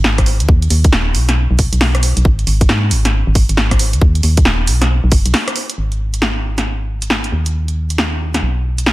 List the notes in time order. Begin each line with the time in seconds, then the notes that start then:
Already playing: G#1
0.04 snare
0.18 kick, cross-stick, closed hi-hat
0.26 open hi-hat
0.40 D#2, closed hi-hat
0.49 D#2, kick
0.62 closed hi-hat
0.70 D#2, open hi-hat
0.84 kick, closed hi-hat
0.92 D#1, snare
1.15 B1, open hi-hat
1.29 snare, closed hi-hat
1.51 B1
1.59 kick, open hi-hat
1.73 B1, closed hi-hat
1.81 snare, open hi-hat
1.95 cross-stick, closed hi-hat
2.03 open hi-hat
2.17 B1, closed hi-hat
2.25 G#1, kick
2.39 closed hi-hat
2.47 G#1, open hi-hat
2.61 kick, closed hi-hat
2.69 G#2, snare
2.91 G#1, open hi-hat
3.05 snare, closed hi-hat
3.27 G#1
3.35 kick, open hi-hat
3.49 G#1, closed hi-hat
3.57 snare
3.71 kick, cross-stick, closed hi-hat
3.79 open hi-hat
3.93 D#2, closed hi-hat
4.01 D#2, kick
4.15 closed hi-hat
4.23 D#2, open hi-hat
4.37 kick, closed hi-hat
4.45 D#1, snare
4.67 B1, open hi-hat
4.82 cross-stick, snare, closed hi-hat
5.04 B1
5.12 F#1, kick, open hi-hat
5.26 B1, closed hi-hat
5.34 snare, open hi-hat
5.48 cross-stick, closed hi-hat
5.56 open hi-hat
5.70 closed hi-hat
5.78 G#1
5.92 closed hi-hat
6.14 closed hi-hat
6.22 snare
6.58 snare, closed hi-hat
7.02 closed hi-hat
7.10 snare
7.24 closed hi-hat
7.32 D#2
7.46 closed hi-hat
7.68 closed hi-hat
7.90 closed hi-hat
7.98 snare
8.34 snare, closed hi-hat
8.42 B1
8.78 closed hi-hat
8.86 snare